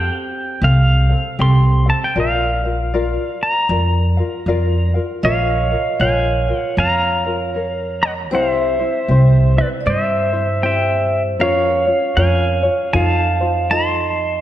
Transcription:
Already playing: ukulele C4 G4 A4 F5, pedal steel guitar G5
0.62 upright bass C2, ukulele C4 G4 A4 F5, pedal steel guitar F5
1.09 ukulele C4 A4 F5
1.39 upright bass C2, ukulele C4 G4 A4 F5, pedal steel guitar C6
1.86 ukulele C4 A4 F5, pedal steel guitar A5
2.04 pedal steel guitar G5
2.16 upright bass A#1, ukulele F4 A#4 D5 F5
2.20 pedal steel guitar F5
2.64 ukulele F4 A#4 F5
2.94 ukulele F4 A#4 D5 F5
3.43 pedal steel guitar A#5
3.69 upright bass F2, ukulele F4 A#4 D5 F5
4.17 ukulele F4 A#4 F5
4.46 upright bass F2, ukulele F4 A#4 D5 F5
4.94 ukulele F4 A#4 F5
5.23 upright bass A#1, ukulele F4 A#4 C#5 F5, pedal steel guitar C#5 F5, vibraphone D#5
5.71 ukulele F4 A#4 F5
6.00 upright bass A#1, ukulele F4 A#4 C#5 F5, vibraphone C#5, pedal steel guitar F5 G#5
6.48 ukulele F4 A#4 F5
6.59 pedal steel guitar F#5
6.77 upright bass F2, pedal steel guitar F5 A#5
7.24 ukulele F4 A#4 F5
7.54 ukulele A#4 C#5
8.03 pedal steel guitar D#5 F#5
8.31 upright bass C2, ukulele C4 E4 G4 C5, vibraphone C5, pedal steel guitar F5
8.36 pedal steel guitar C5
8.52 pedal steel guitar E5
8.79 ukulele C4 E4 C5
9.08 upright bass C2, ukulele C4 E4 G4 C5
9.57 ukulele C4 E4, pedal steel guitar D5
9.61 pedal steel guitar B4
9.81 vibraphone D5
9.86 upright bass G2, vibraphone C5, pedal steel guitar E5
9.90 pedal steel guitar C5
10.33 ukulele C4 E4 C5
10.63 ukulele C4 E4 G4 C5, pedal steel guitar E5 G5
11.39 upright bass F2, ukulele C#4 F4 A#4 C#5, vibraphone C#5, pedal steel guitar C#5 F5
11.87 ukulele C#4 F4 C#5
12.17 upright bass F2, ukulele C#4 F4 A#4 C#5, pedal steel guitar F5 G#5
12.63 ukulele C#4 F4 C#5
12.93 upright bass F2, ukulele D#4 F4 A4 C5, vibraphone F5, pedal steel guitar F5 G#5
13.04 pedal steel guitar A5
13.40 ukulele D#4 F4 C5
13.71 ukulele D#4 F4 A4 C5, vibraphone D#5, pedal steel guitar A5 C6

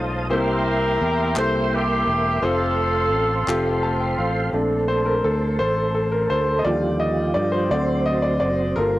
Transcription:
Already playing: fingered electric bass B1, grand piano G#3 A3 D#4 F4 C5, tonewheel organ C5 F5 A5 D#6
0.30 fingered electric bass C2, grand piano C3 A#3 E4 G4 C5, tonewheel organ A#3 E5 G5 C6, horn section E4 G4 A#4
1.01 fingered electric bass E2
1.36 fingered electric bass C2, grand piano A#3 E4 G4 A4, horn section C5, clap
1.74 horn section A#3 E4 G4
2.07 fingered electric bass E1
2.42 fingered electric bass F1, grand piano A3 C4 F4 C5, horn section C4 F4 A4, tonewheel organ A4 C5 F5
3.13 fingered electric bass A1
3.47 fingered electric bass F1, grand piano A3 C4 F4 G4, clap
3.83 grand piano A5
4.00 grand piano G5
4.18 fingered electric bass A1, grand piano F5
4.53 fingered electric bass A#1, grand piano A3 C4 D4, tonewheel organ A3 A4 C5
4.88 grand piano C5
5.06 grand piano A#4
5.24 fingered electric bass D2, grand piano A4
5.59 fingered electric bass A1, grand piano C5
5.94 grand piano A4
6.12 grand piano A#4
6.30 fingered electric bass D2, grand piano C5
6.59 grand piano D#5
6.64 fingered electric bass D#2, grand piano D3 G3 F4 D5, tonewheel organ F3 F4 G4
7.00 grand piano D#5
7.34 fingered electric bass G2, grand piano D5
7.52 grand piano C5
7.71 fingered electric bass D2, tonewheel organ F#3 C4 C5, grand piano A3 C4 F#4 D5
8.06 grand piano D#5
8.22 grand piano D5
8.40 fingered electric bass F#1, grand piano D5
8.76 fingered electric bass G1, tonewheel organ G3 A#3 F4, grand piano A#3 F4 A4 A#4

